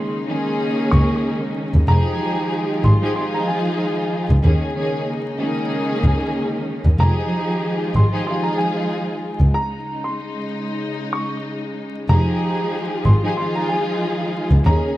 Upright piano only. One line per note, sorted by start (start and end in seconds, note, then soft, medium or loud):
0.00 0.57 C6 medium
0.91 1.08 C#6 medium
1.88 2.80 A#5 loud
2.84 3.13 C6 medium
3.15 3.31 C6 medium
3.34 3.47 A#5 medium
3.48 4.40 G#5 medium
7.00 7.91 A#5 loud
7.96 8.24 C6 medium
8.27 8.43 C6 medium
8.43 8.57 A#5 medium
8.58 9.50 G#5 medium
9.54 10.01 A#5 loud
10.04 10.78 C6 medium
11.13 11.29 C#6 medium
12.09 13.01 A#5 loud
13.05 13.34 C6 medium
13.37 13.53 C6 medium
13.55 13.68 A#5 medium
13.69 14.61 G#5 medium
14.66 14.97 A#5 loud